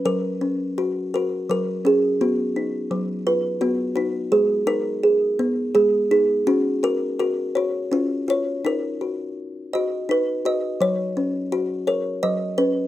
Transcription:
\new Staff \with { instrumentName = "Kalimba" } { \time 3/4 \key fis \major \tempo 4 = 84 << { ais'4 r8 fis'8 ais'8 gis'8 | fis'4 r8 eis'8 fis'8 fis'8 | gis'8 ais'4. gis'8 gis'8 | fis'8 ais'8 fis'8 fis'8 eis'8 cis''8 |
ais'4 r8 fis'8 b'8 dis''8 | cis''4 r8 ais'8 dis''8 b'8 | } \\ { fis8 cis'8 fis'8 ais'8 fis8 cis'8 | b8 dis'8 fis8 b'8 b8 dis'8 | gis8 dis'8 gis'8 b8 gis8 dis'8 | cis'8 fis'8 ais'8 cis''8 cis'8 eis'8 |
dis'8 fis'4 dis''8 dis'8 fis'8 | fis8 cis'8 fis'8 cis''8 fis8 cis'8 | } >> }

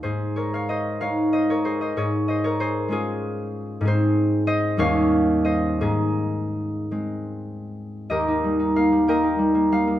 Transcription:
<<
  \new Staff \with { instrumentName = "Harp" } { \time 6/8 \key aes \major \tempo 4. = 62 << { c''8 des''16 f''16 ees''8 f''8 ees''16 des''16 c''16 ees''16 | des''8 ees''16 des''16 c''8 aes'4. | c''4 ees''8 f''4 ees''8 | aes'2. |
\key ees \major ees''4 f''8 g''4 f''8 | } \\ { aes'8 bes'16 des''16 c''8 des''8 c''16 bes'16 aes'16 c''16 | aes'8 c''16 bes'16 aes'8 f'4. | aes'4 c''8 des''4 c''8 | ees'2. |
<g' bes'>4. <bes' ees''>4. | } >> }
  \new Staff \with { instrumentName = "Harp" } { \clef bass \time 6/8 \key aes \major <aes, ees'>4. <aes ees'>4. | aes,4. <aes des'>4. | <aes, aes c'>4. <ees, g des'>4. | aes,4. <aes c'>4. |
\key ees \major ees,16 ees'16 g16 ees'16 bes16 g16 bes16 ees'16 g16 bes16 g16 bes16 | }
>>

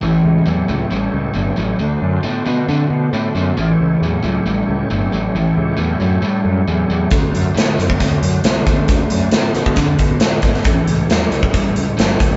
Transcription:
<<
  \new Staff \with { instrumentName = "Tonewheel organ" } { \time 4/4 \key a \mixolydian \tempo 4 = 135 <a e' g' cis''>1 | <a d' fis' c''>1 | \tuplet 3/2 { <bes f' gis' d''>8 <a e' g' cis''>4~ } <a e' g' cis''>2.~ | <a e' g' cis''>1 |
<a d' fis' c''>1~ | <a d' fis' c''>1 | <a e' g' cis''>1 | }
  \new Staff \with { instrumentName = "Distorted electric guitar" } { \clef bass \time 4/4 \key a \mixolydian <a, e>4 <a, fis>8 <a, fis>8 <a, g>4 <a, fis>8 <a, fis>8 | <d a>4 <d b>8 <d b>8 <d c'>4 <d b>8 <d b>8 | <a, e>4 <a, fis>8 <a, fis>8 <a, g>4 <a, fis>8 <a, fis>8 | <a, e>4 <a, fis>8 <a, fis>8 <a, g>4 <a, fis>8 <a, fis>8 |
<d a>4 <d b>8 <d b>8 <d c'>4 <d b>8 <d b>8 | <d a>4 <d b>8 <d b>8 <d c'>4 <d b>8 <d b>8 | <a, e>4 <a, fis>8 <a, fis>8 <a, g>4 <a, fis>8 <a, fis>8 | }
  \new Staff \with { instrumentName = "Picked electric bass" } { \clef bass \time 4/4 \key a \mixolydian a,,8 cis,8 e,8 cis,8 a,,8 cis,8 g,,8 a,,8 | d,8 fis,8 a,8 b,8 d8 b,8 a,8 fis,8 | a,,8 cis,8 e,8 cis,8 a,,8 cis,8 g,,8 a,,8 | a,,8 cis,8 e,8 fis,8 a,8 fis,8 e,8 e,8 |
d,8 fis,8 a,8 fis,8 d,8 fis,8 c,8 d,8 | d,8 fis,8 a,8 b,8 d8 b,8 a,8 gis,,8 | a,,8 cis,8 e,8 cis,8 a,,8 cis,8 g,,8 d,8 | }
  \new DrumStaff \with { instrumentName = "Drums" } \drummode { \time 4/4 r4 r4 r4 r4 | r4 r4 r4 r4 | r4 r4 r4 r4 | r4 r4 r4 r4 |
<hh bd>8 hh8 <hh sn>8 hh16 bd16 <hh bd>8 hh8 <hh sn>8 <hh bd>8 | <hh bd>8 hh8 <hh sn>8 hh16 bd16 <hh bd>8 <hh bd>8 <hh sn>8 <hh bd>16 sn16 | <hh bd>8 hh8 <hh sn>8 hh16 bd16 <hh bd>8 hh8 <hh sn>8 <hh bd>8 | }
>>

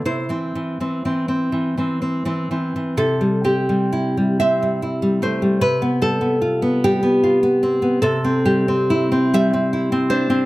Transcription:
\new Staff \with { instrumentName = "Nylon-string guitar" } { \time 6/8 \key c \major \tempo 4. = 47 << { <e' c''>4. r4. | a'8 g'4 e''4 c''8 | b'8 a'4 g'4. | a'8 g'4 e''4 c''8 | } \\ { c16 <e c'>16 e16 <e c'>16 <e c'>16 c'16 e16 <e c'>16 c'16 <e c'>16 <e c'>16 e16 | c16 g16 c'16 g16 e'16 g16 c'16 g16 e'16 g16 a16 g16 | c16 b16 g16 b16 f'16 b16 g16 b16 f'16 b16 c'16 b16 | c16 c'16 g16 c'16 e'16 c'16 g16 c'16 e'16 c'16 d'16 c'16 | } >> }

